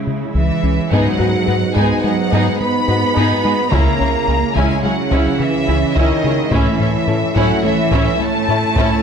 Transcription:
Already playing: C#3 G#3 E4
0.07 C#3 G#3
0.35 C#2 C#3 E3 E5
0.63 C#2 C#4
0.91 G#2 F#3 G#3 B3 D#4 G#4 F#5, taiko
1.19 G#2 B3 D#4 F#4 G#4 D#5
1.46 G#2 B3 D#4 F#4 B4
1.75 G#2 G#3 B3 D#4 G#4 G#5, taiko
2.02 F#3 G#3 B3 D#4 G#4 D#5 F#5
2.31 G#2 G#3 B3 D#4 G#4
2.58 G#3 B3 B5
2.87 G#2 B3 D#4 F#4 B4
3.15 G#2 G#3 B3 D#4 G#4
3.43 G#3 B3 D#4 G#4 D#5
3.71 C#2 C#3 A#3 C#4 E4 A#5, taiko
3.99 C#2 C#4 E4 G#4 C#5
4.28 C#2 C#4 E4 G#4
4.55 C#2 C#3 G#3 C#4 E4 G#5, taiko
4.82 C#3 F#3 G#3 C#4 E4 G#4 C#5 F#5
5.10 C#2 C#3 C#4 E4, taiko
5.38 C#3 E3 E5
5.67 C#2 C#4 E4 G#4
5.94 C#2 C#3 D#3 C#4 E4 D#5, taiko
6.23 C#3 G#3 C#4 E4 G#4 C#5
6.51 A2 E3 A3 C#4 E4 E5, taiko
6.80 A2 C#4 E4 A4 C#5
7.07 A2 C#4 E4 A4
7.35 A2 F#3 A3 C#4 E4 F#5, taiko
7.62 E3 A3 C#4 E4 A4 C#5 E5
7.91 A2 A3 C#4 E4, taiko
8.19 A3 A5
8.48 A2 C#4 E4 A4
8.76 A2 A3 C#4 E4, taiko

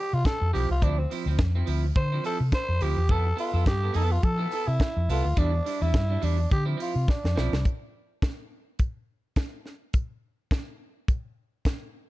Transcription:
0.00 G4
0.12 C3 F4, muted clean electric guitar stroke
0.25 A4, kick, snare, closed hi-hat
0.40 F2, muted clean electric guitar stroke
0.53 B1 F3 C4 E4 G4, open hi-hat
0.69 C2 F4, muted clean electric guitar stroke
0.82 D2 F3 C4 D4 E4, kick, closed hi-hat
0.97 C4, muted clean electric guitar stroke
1.11 F3 C4 E4, open hi-hat
1.26 D2 F3 C4 E4
1.38 F2, muted clean electric guitar stroke, kick, snare, closed hi-hat
1.55 F3 C4 E4
1.66 D2 F3 C4 E4, open hi-hat
1.84 muted clean electric guitar stroke
1.95 D3 C5, muted clean electric guitar stroke, kick, closed hi-hat
2.12 F3 C4 E4
2.24 F3 C4 E4 A4, open hi-hat
2.40 C3, muted clean electric guitar stroke
2.52 C5, kick, snare, closed hi-hat
2.68 F2, muted clean electric guitar stroke
2.81 D2 F3 C4 E4 G4, open hi-hat
2.97 E2, muted clean electric guitar stroke
3.09 F2 B3 E4 A4, kick, closed hi-hat
3.26 muted clean electric guitar stroke
3.36 B3 E4 F4 A4, open hi-hat
3.54 F2 B3 E4 A4
3.66 G2 G4, kick, snare, closed hi-hat
3.83 B3 E4 A4
3.93 F2 B3 E4 A4, open hi-hat
4.10 F4, muted clean electric guitar stroke
4.23 F3 A4, muted clean electric guitar stroke, kick, closed hi-hat
4.38 B3 E4 A4
4.52 B3 E4 A4, open hi-hat
4.68 C3 E4, muted clean electric guitar stroke
4.80 kick, snare, closed hi-hat
4.96 F2, muted clean electric guitar stroke
5.08 C2 B3 E4 F4 A4, open hi-hat
5.24 D2, muted clean electric guitar stroke
5.36 E2 G3 D4 E4, kick, closed hi-hat
5.53 muted clean electric guitar stroke
5.65 G3 D4 E4, open hi-hat
5.81 E2 G3 D4 E4
5.94 G2, muted clean electric guitar stroke, kick, snare, closed hi-hat
6.09 G3 D4 E4
6.21 E2 G3 D4 E4, open hi-hat
6.38 muted clean electric guitar stroke
6.50 D3 G4, muted clean electric guitar stroke, kick, closed hi-hat
6.65 F3 C4 E4
6.77 F3 C4 E4, open hi-hat
6.81 F4
6.95 C3, muted clean electric guitar stroke
7.08 D4, kick, snare
7.23 F2, muted clean electric guitar stroke, snare
7.36 B1 F3 C4 E4, snare
7.53 C2, muted clean electric guitar stroke, snare
7.65 kick, closed hi-hat
8.22 kick, snare, closed hi-hat
8.79 kick, closed hi-hat
9.36 kick, snare, closed hi-hat
9.66 snare
9.93 kick, closed hi-hat
10.51 kick, snare, closed hi-hat
11.08 kick, closed hi-hat
11.65 kick, snare, closed hi-hat

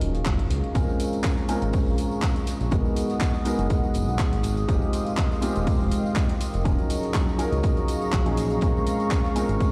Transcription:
Already playing: F#3 C#4 D#4 F4 G#4 A#4 F5 C#6
0.01 D#1, open hi-hat
0.15 closed hi-hat
0.25 F#1, kick, snare, clap, closed hi-hat
0.39 closed hi-hat
0.50 C#2, snare, closed hi-hat, open hi-hat
0.64 closed hi-hat
0.74 A#1 G#3 C4 C#4 F4 G#4 A#4 F5 A#5 C#6, kick, closed hi-hat, tambourine
0.89 tambourine
1.00 closed hi-hat, open hi-hat, tambourine
1.13 closed hi-hat, tambourine
1.24 kick, snare, clap, closed hi-hat, tambourine
1.37 snare, tambourine
1.48 G#3 C4 C#4 F4 A#4, snare, closed hi-hat, open hi-hat, tambourine
1.62 G#1, closed hi-hat, tambourine
1.73 kick, closed hi-hat, open hi-hat, tambourine
1.87 A#1, tambourine
1.98 closed hi-hat, open hi-hat, tambourine
2.11 tambourine
2.22 kick, snare, clap, closed hi-hat, tambourine
2.36 closed hi-hat, tambourine
2.47 snare, closed hi-hat, open hi-hat, tambourine
2.60 A#1, snare, closed hi-hat, tambourine
2.71 G#1 G#3 B3 D#4 F#4 G#4 A#4 F#5 D#6, kick, closed hi-hat, tambourine
2.85 tambourine
2.96 closed hi-hat, open hi-hat, tambourine
3.10 snare, closed hi-hat, tambourine
3.21 kick, snare, clap, closed hi-hat, tambourine
3.34 tambourine
3.45 G#3 B3 D#4 F#4 A#4, closed hi-hat, open hi-hat, tambourine
3.59 F#1 F#5, closed hi-hat, tambourine
3.70 kick, closed hi-hat, tambourine
3.84 tambourine
3.94 F#1, closed hi-hat, open hi-hat, tambourine
4.08 B1, tambourine
4.19 kick, snare, clap, closed hi-hat, tambourine
4.32 G#1, closed hi-hat, tambourine
4.43 G#1, closed hi-hat, open hi-hat, tambourine
4.57 closed hi-hat, tambourine
4.68 F1 G#3 C4 D#4 F4 G4 A#4 F5 C6, kick, closed hi-hat, tambourine
4.79 D#5, tambourine
4.93 closed hi-hat, open hi-hat, tambourine
5.06 closed hi-hat, tambourine
5.17 kick, snare, clap, closed hi-hat, tambourine
5.31 snare, tambourine
5.42 G#3 C4 D#4 F4 G4, snare, closed hi-hat, open hi-hat, tambourine
5.56 D#1 G5, closed hi-hat, tambourine
5.67 kick, closed hi-hat, open hi-hat, tambourine
5.80 F1, tambourine
5.92 closed hi-hat, open hi-hat, tambourine
6.06 tambourine
6.16 kick, snare, clap, closed hi-hat, tambourine
6.29 closed hi-hat, tambourine
6.41 closed hi-hat, open hi-hat, tambourine
6.54 F1, closed hi-hat, tambourine
6.65 D#1 F#3 C#4 D#4 F4 G#4 A#4 D#5 A#5 C#6, kick, closed hi-hat, tambourine
6.79 closed hi-hat, tambourine
6.90 closed hi-hat, open hi-hat, tambourine
7.03 snare, closed hi-hat, tambourine
7.12 F5 C#6, kick, snare, clap, closed hi-hat, tambourine
7.28 tambourine
7.38 F#3 C#4 D#4 F4 A#4, closed hi-hat, open hi-hat, tambourine
7.52 C#2, closed hi-hat, tambourine
7.63 kick, closed hi-hat, tambourine
7.77 closed hi-hat, tambourine
7.88 closed hi-hat, open hi-hat, tambourine
8.02 closed hi-hat, tambourine
8.12 A#1, kick, snare, clap, closed hi-hat, tambourine
8.26 F#3 C#4 D#4 F4 G#4, closed hi-hat, tambourine
8.37 closed hi-hat, open hi-hat, tambourine
8.51 closed hi-hat, tambourine
8.61 A#1 G#3 C4 C#4 F4 A#4 F5, kick, closed hi-hat, tambourine
8.77 tambourine
8.87 closed hi-hat, open hi-hat, tambourine
9.00 closed hi-hat, tambourine
9.11 kick, snare, clap, closed hi-hat, tambourine
9.24 snare, tambourine
9.35 G#3 C4 C#4 F4 A#4, snare, closed hi-hat, open hi-hat, tambourine
9.49 G#1, closed hi-hat, tambourine
9.60 kick, closed hi-hat, open hi-hat, tambourine

